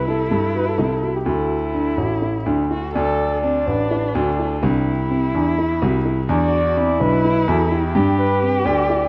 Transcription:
Already playing: C2 E4
0.08 E4 A4
0.31 G2 G4 A4
0.55 F#4 B4
0.68 A4
0.78 C2 E4
1.02 F#4
1.15 G4
1.26 D2 E4 F#4 A4
1.74 D4
1.97 A1 F#4
2.22 E4
2.46 D2 D4
2.71 E4 F#4
2.94 D2 D4 A4 D5
3.42 C4 D4
3.67 A1 D4 B4
3.91 E4
4.15 D2 F#4 A4
4.39 E4
4.62 C2 D4 E4 G4
5.10 C4
5.35 E2 D4
5.58 E4
5.82 C2 F#4
6.05 E4
6.29 E2 D4 F#4 D5
6.77 C4 E4
7.00 B1 D4 B4
7.25 E4
7.48 E2 F#4 A4
7.72 E4 G4
7.95 G2 D4 G4
8.19 B4
8.42 C4
8.65 D2 D4 D5
8.90 E4

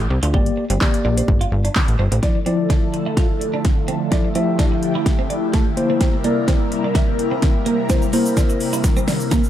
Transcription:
0.10 C2, muted clean electric guitar stroke
0.23 D2 F4, closed hi-hat
0.34 G1 A#3 G4 D5, kick
0.46 closed hi-hat
0.57 muted clean electric guitar stroke
0.70 G1 C4, closed hi-hat
0.81 A#3 G4 D5, muted clean electric guitar stroke, kick, snare, clap
0.94 closed hi-hat
1.05 A#1 D4
1.17 C4, closed hi-hat
1.28 G1, kick
1.41 F4, closed hi-hat
1.52 G1, muted clean electric guitar stroke
1.65 D4, closed hi-hat
1.75 muted clean electric guitar stroke, kick, snare, clap
1.88 A1, closed hi-hat
1.99 G1 C4
2.12 A1 C4, closed hi-hat
2.23 D3 F3 A3 D4 E4 A4 D5, kick, snare, closed hi-hat
2.35 muted clean electric guitar stroke
2.46 F3 C4 E4 D5, closed hi-hat
2.70 D4, kick, snare, closed hi-hat
2.94 muted clean electric guitar stroke, closed hi-hat
3.06 E4
3.17 F4, kick, snare, closed hi-hat
3.41 muted clean electric guitar stroke, closed hi-hat
3.54 D4
3.65 kick, snare, closed hi-hat
3.88 C4, closed hi-hat
4.12 F3 D4 E4 G4 D5, kick, snare, closed hi-hat
4.25 muted clean electric guitar stroke
4.35 F3 C4 E4 E5, closed hi-hat
4.59 D4, kick, snare, closed hi-hat
4.72 muted clean electric guitar stroke
4.83 closed hi-hat
4.95 E4
5.06 muted clean electric guitar stroke, kick, snare, closed hi-hat
5.19 C4
5.30 D4, closed hi-hat
5.54 A3, kick, snare, closed hi-hat
5.77 C3 G3 A#3 E4 A#4 C5, muted clean electric guitar stroke, closed hi-hat
5.90 C4
6.01 C4, kick, snare, closed hi-hat
6.13 muted clean electric guitar stroke
6.24 A#3 E4 D5, closed hi-hat
6.48 C4, kick, snare, closed hi-hat
6.72 muted clean electric guitar stroke, closed hi-hat
6.84 D4
6.95 E4, kick, snare, closed hi-hat
7.19 muted clean electric guitar stroke, closed hi-hat
7.31 C4
7.42 kick, snare, closed hi-hat
7.66 A#3, closed hi-hat
7.90 A#3 C4 E4 C5, kick, snare, closed hi-hat, shaker
8.02 muted clean electric guitar stroke, shaker
8.13 A#3 E4 C5, open hi-hat, shaker
8.26 shaker
8.37 D4, kick, snare, closed hi-hat, shaker
8.50 muted clean electric guitar stroke, shaker
8.60 open hi-hat, shaker
8.73 E4, shaker
8.84 muted clean electric guitar stroke, kick, snare, closed hi-hat, shaker
8.97 C4, shaker
9.08 D4, snare, open hi-hat, shaker
9.20 shaker
9.31 A#3, kick, snare, closed hi-hat, shaker
9.44 shaker

